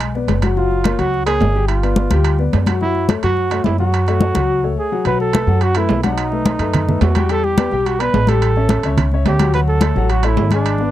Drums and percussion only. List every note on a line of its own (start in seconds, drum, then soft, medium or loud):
0.00 high conga soft
0.00 high timbale medium
0.15 high conga soft
0.28 high conga medium
0.28 high timbale medium
0.28 low timbale medium
0.42 high conga medium
0.42 high timbale medium
0.57 high conga soft
0.71 high conga soft
0.84 high conga medium
0.84 high timbale medium
0.84 low timbale medium
0.99 high conga soft
0.99 high timbale medium
1.14 high conga soft
1.27 high conga soft
1.27 high timbale medium
1.41 high conga medium
1.41 low timbale medium
1.56 high conga soft
1.68 high conga soft
1.68 high timbale medium
1.83 high conga soft
1.83 high timbale medium
1.96 high conga medium
1.96 low timbale medium
2.11 high conga medium
2.11 high timbale medium
2.25 high conga soft
2.25 high timbale loud
2.38 high conga soft
2.53 high conga medium
2.53 high timbale medium
2.53 low timbale medium
2.66 high conga medium
2.66 high timbale medium
2.81 high conga soft
2.95 high conga soft
3.09 high conga loud
3.09 high timbale medium
3.09 low timbale soft
3.23 high conga soft
3.23 high timbale medium
3.37 high conga soft
3.50 high conga soft
3.50 high timbale medium
3.64 high conga medium
3.64 low timbale medium
3.78 high conga soft
3.93 high conga soft
3.93 high timbale medium
4.06 high conga soft
4.06 high timbale medium
4.21 high conga medium
4.21 low timbale medium
4.35 high conga medium
4.35 high timbale medium
5.05 high conga soft
5.05 high timbale medium
5.20 high conga soft
5.33 high conga medium
5.33 high timbale medium
5.33 low timbale medium
5.49 high conga soft
5.61 high conga soft
5.61 high timbale medium
5.75 high conga soft
5.75 high timbale medium
5.89 high conga medium
5.89 low timbale medium
6.04 high conga medium
6.04 high timbale medium
6.18 high conga soft
6.18 high timbale medium
6.32 high conga soft
6.46 high conga loud
6.46 high timbale medium
6.46 low timbale medium
6.59 high timbale medium
6.73 high conga soft
6.73 low conga medium
6.73 high timbale loud
6.89 high conga soft
6.89 low conga medium
7.01 high conga medium
7.01 high timbale medium
7.01 low timbale medium
7.15 high conga medium
7.15 high timbale loud
7.29 high conga soft
7.29 high timbale medium
7.44 high conga soft
7.58 high conga loud
7.58 high timbale medium
7.58 low timbale medium
7.71 high conga soft
7.86 high conga soft
7.86 high timbale medium
8.00 high conga soft
8.00 high timbale medium
8.14 high conga medium
8.14 low timbale medium
8.27 high conga medium
8.27 high timbale medium
8.42 high conga soft
8.42 high timbale medium
8.56 high conga soft
8.69 high conga loud
8.69 high timbale medium
8.69 low timbale medium
8.83 high timbale medium
8.98 high conga soft
8.98 low conga medium
8.98 high timbale loud
9.11 high conga soft
9.26 high conga medium
9.26 high timbale medium
9.26 low timbale medium
9.39 high conga medium
9.39 high timbale loud
9.53 high conga soft
9.53 high timbale medium
9.68 high conga soft
9.81 high conga loud
9.81 high timbale medium
9.81 low timbale medium
9.96 high conga soft
10.09 high conga soft
10.09 high timbale medium
10.23 high conga soft
10.23 high timbale medium
10.37 high conga medium
10.37 low timbale medium
10.51 high conga medium
10.51 high timbale medium
10.65 high conga soft
10.65 high timbale medium
10.78 high conga soft